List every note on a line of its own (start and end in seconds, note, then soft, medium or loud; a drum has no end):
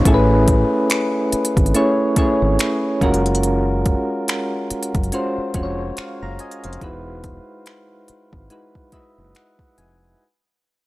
0.00 downlifter medium
0.05 0.62 A1 loud
0.05 1.48 A3 medium
0.05 1.48 C#4 medium
0.05 1.48 E4 medium
0.05 1.48 G#4 medium
0.05 0.14 A4 medium
0.05 kick loud
0.05 closed hi-hat medium
0.14 1.52 B4 medium
0.48 kick medium
0.48 closed hi-hat medium
0.90 finger snap loud
0.90 closed hi-hat medium
1.32 muted fingered electric bass stroke soft
1.32 closed hi-hat medium
1.45 closed hi-hat medium
1.57 1.72 G#1 medium
1.57 kick loud
1.57 closed hi-hat soft
1.66 closed hi-hat soft
1.74 2.11 A3 medium
1.74 2.11 C#4 medium
1.74 2.11 E4 medium
1.74 2.12 G#4 medium
1.74 2.12 C#5 medium
1.74 closed hi-hat medium
2.16 3.01 A3 medium
2.16 3.01 C#4 medium
2.16 3.02 E4 medium
2.16 3.02 G#4 medium
2.16 3.02 C#5 medium
2.16 muted fingered electric bass stroke soft
2.16 kick loud
2.16 closed hi-hat medium
2.42 2.57 G#1 medium
2.59 finger snap loud
2.59 closed hi-hat medium
3.01 3.94 F#1 medium
3.01 4.43 G#3 medium
3.01 4.44 C#4 medium
3.01 4.44 F4 medium
3.01 4.44 F#4 medium
3.01 4.44 A#4 loud
3.01 kick loud
3.01 closed hi-hat soft
3.14 closed hi-hat medium
3.26 closed hi-hat soft
3.35 closed hi-hat medium
3.43 closed hi-hat medium
3.86 kick medium
3.86 closed hi-hat medium
4.28 finger snap loud
4.28 closed hi-hat medium
4.71 muted fingered electric bass stroke soft
4.71 closed hi-hat medium
4.83 closed hi-hat medium
4.95 5.10 F#1 medium
4.95 kick loud
4.95 closed hi-hat soft
5.04 closed hi-hat soft
5.12 5.49 G#3 medium
5.12 5.49 C#4 medium
5.12 5.49 F4 medium
5.12 5.49 F#4 medium
5.12 5.50 C5 medium
5.12 closed hi-hat medium
5.38 muted fingered electric bass stroke soft
5.54 5.91 F1 medium
5.54 6.63 G#3 medium
5.54 6.63 C#4 medium
5.54 6.63 F4 medium
5.54 6.64 F#4 medium
5.54 5.63 C5 medium
5.54 kick medium
5.54 closed hi-hat medium
5.63 6.01 C#5 medium
5.97 6.21 C5 medium
5.97 6.21 F5 medium
5.97 finger snap medium
5.97 muted fingered electric bass stroke soft
5.97 closed hi-hat medium
6.22 6.37 F#1 medium
6.22 6.39 F5 medium
6.22 6.39 A#5 medium
6.39 6.63 D#5 medium
6.39 6.63 G#5 medium
6.39 closed hi-hat soft
6.51 closed hi-hat medium
6.64 6.79 F1 medium
6.64 7.05 C5 medium
6.64 7.04 F5 medium
6.64 closed hi-hat medium
6.73 closed hi-hat soft
6.81 7.38 E1 loud
6.81 8.24 G#3 medium
6.81 8.24 D#4 medium
6.81 8.24 E4 medium
6.81 8.24 F#4 medium
6.81 8.25 B4 medium
6.81 kick loud
6.81 closed hi-hat medium
7.24 kick medium
7.24 closed hi-hat medium
7.66 finger snap loud
7.66 closed hi-hat medium
8.08 muted fingered electric bass stroke soft
8.08 closed hi-hat medium
8.33 8.48 G#1 medium
8.33 kick medium
8.50 8.87 G#3 medium
8.50 8.87 D#4 medium
8.50 8.87 E4 medium
8.50 8.87 F#4 medium
8.50 8.88 B4 medium
8.50 closed hi-hat medium
8.75 kick medium
8.92 10.01 G#3 medium
8.92 10.01 E4 medium
8.92 10.02 F#4 medium
8.92 10.02 B4 medium
8.92 10.01 D#5 medium
8.92 9.33 E5 medium
8.92 muted fingered electric bass stroke soft
8.92 kick medium
8.92 closed hi-hat medium
9.18 9.33 F#1 medium
9.35 9.75 F#5 medium
9.35 finger snap loud
9.35 closed hi-hat medium
9.59 kick medium
9.78 10.14 F1 medium
9.78 10.17 G#5 medium
9.78 closed hi-hat medium